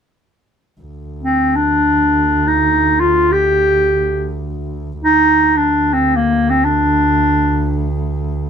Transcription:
0.81 D2
1.23 C4
1.56 D4
2.47 D#4
3.00 F4
3.32 G4
5.02 D2 D#4
5.57 D4
5.93 C4
6.16 A#3
6.50 C4
6.64 D4

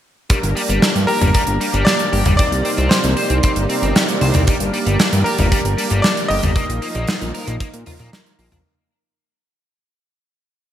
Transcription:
0.30 G3 A#3 D4 G4 A#4 D5, kick, closed hi-hat
0.43 G1, closed hi-hat
0.56 G3, open hi-hat
0.69 G1 G3, closed hi-hat
0.82 D4, snare, closed hi-hat
0.95 G2, closed hi-hat
1.07 G4 A#4, open hi-hat
1.21 G1 G3, closed hi-hat, mid tom
1.34 G3, kick, closed hi-hat
1.47 G1, closed hi-hat
1.60 G3 A#3 D4 G4 A#4, open hi-hat
1.74 G1 G3, closed hi-hat
1.85 D4 D5, snare, closed hi-hat
1.99 closed hi-hat
2.13 G1 G4, open hi-hat
2.25 G1 G3, closed hi-hat, mid tom
2.37 C3 G3 C4 D#4 G4 A#4 D5, kick, closed hi-hat
2.52 C2, closed hi-hat
2.65 C4, open hi-hat
2.78 C2 C4, closed hi-hat
2.89 G4 C5, snare, closed hi-hat
3.04 C2, closed hi-hat
3.17 C5, open hi-hat
3.30 C2 C4, closed hi-hat
3.43 C4, kick, closed hi-hat
3.56 G1, closed hi-hat
3.69 C4 D#4 G4 A#4, open hi-hat
3.82 G1 C4, closed hi-hat
3.95 G4, snare, closed hi-hat
4.08 closed hi-hat
4.21 C2 C5, open hi-hat
4.34 C2 C4, closed hi-hat, mid tom
4.47 G3 A#3 D4 G4 A#4, kick, closed hi-hat
4.60 G1, closed hi-hat
4.73 G3, open hi-hat
4.86 G1 G3, closed hi-hat
4.99 D4, snare, closed hi-hat
5.13 G2, closed hi-hat
5.24 G4 A#4, open hi-hat
5.38 G1 G3, closed hi-hat, mid tom
5.52 G3, kick, closed hi-hat
5.65 G1, closed hi-hat
5.78 G3 A#3 D4 G4 A#4, open hi-hat
5.90 G1 G3, closed hi-hat
6.02 D4 D5, snare, closed hi-hat
6.17 closed hi-hat
6.28 G1 G4 D#5, open hi-hat
6.43 G1 G3, closed hi-hat, mid tom
6.56 F3 A#3 D#4 F4 A#4, kick, closed hi-hat
6.69 A#1, closed hi-hat
6.82 A#3, open hi-hat
6.95 A#1 A#3, closed hi-hat
7.07 F4, snare, closed hi-hat
7.21 A#1, closed hi-hat
7.34 A#4, open hi-hat
7.47 A#1 A#3, closed hi-hat
7.60 A#3, kick, closed hi-hat
7.74 A#2, closed hi-hat
7.86 A#3 D#4 F4 A#4, mid tom, open hi-hat
7.99 A#2 A#3, closed hi-hat
8.13 A#3, snare, closed hi-hat
8.26 closed hi-hat
8.39 A#1 A#3, open hi-hat
8.52 A#1 D4, closed hi-hat, mid tom

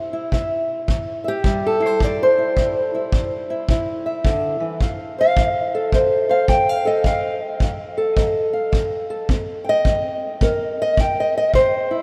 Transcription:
Already playing: C3 E4 E5
0.13 E4
0.32 C3 E5, kick
0.88 C3, kick
1.24 G4 E5
1.44 C3 G3, kick
1.66 A4
1.80 E4
1.86 C5
2.00 C3, kick
2.04 D5
2.23 C5
2.38 E4
2.57 C3 E4, kick
2.95 E4
3.12 C3, kick
3.50 E4
3.69 C3 E4, kick
4.06 E5
4.25 D3, kick
4.60 E3
4.81 F3 F5, kick
5.18 C5 F5
5.37 F3, kick
5.75 A4
5.92 F3 C5, kick
5.98 D#5
6.29 C5 F5
6.48 F3 G5, kick
6.69 F5
6.85 A4 D#5
7.04 F3 F5, kick
7.60 F3, kick
7.98 A4
8.16 F3 D#5, kick
8.53 F5
8.72 F3, kick
9.10 A4
9.29 C4, kick
9.64 G5
9.69 D#5
9.85 C4, kick
10.41 C4 A#4, kick
10.82 D#5
10.97 C4 G5, kick
11.20 D#5
11.38 D#5
11.54 C3 C5, kick
11.91 E4

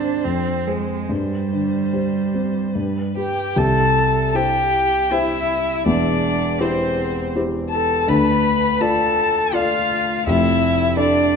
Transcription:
Already playing: G#2 D#3 C4 D4 G#4 C5
0.24 F2 C4
0.67 G#3 G#4 C5
1.09 G2 G3 C5
1.53 D3
1.93 G4 C5
2.34 C4
2.75 G2 B4
3.17 G4 B4 G5
3.56 C2 C3 A4 A5
4.31 E4 A5
4.35 G4 C5 G5
5.11 E4 G4 C5 E5
5.86 E1 E2 D4 D5
6.60 C4 E4 G4 C5
7.35 E4 G4 C5
7.69 A4 A5
8.08 D2 D3 B4 B5
8.81 F4 A4 D5 A5
9.53 F4 A4 D5 F5
10.26 F1 F2 E4 E5
10.96 D4 A4 D5

